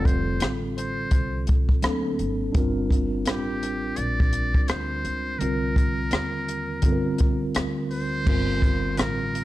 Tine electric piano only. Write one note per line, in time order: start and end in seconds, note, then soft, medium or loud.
0.00 1.79 D3 medium
0.00 1.79 G3 medium
0.00 1.80 C4 medium
0.00 1.81 F4 medium
0.00 1.81 A4 medium
1.82 2.54 F#3 medium
1.82 2.55 A#3 medium
1.82 2.54 C4 medium
1.82 2.51 D4 medium
1.82 2.56 A4 medium
2.53 5.36 G3 medium
2.53 5.37 C4 medium
2.53 5.36 D4 medium
2.53 5.37 F4 medium
2.57 5.38 A#4 medium
5.38 6.79 D3 medium
5.38 6.80 G3 medium
5.38 6.81 C4 medium
5.38 6.81 F4 medium
5.43 6.82 A#4 medium
6.81 8.22 D3 medium
6.81 8.23 G3 medium
6.81 8.24 C4 medium
6.81 8.24 F4 medium
6.86 6.93 A4 medium
6.92 8.28 A#4 medium
8.25 9.44 D3 medium
8.25 9.44 G3 medium
8.25 9.44 C4 medium
8.25 9.44 F4 medium
8.29 9.44 A#4 medium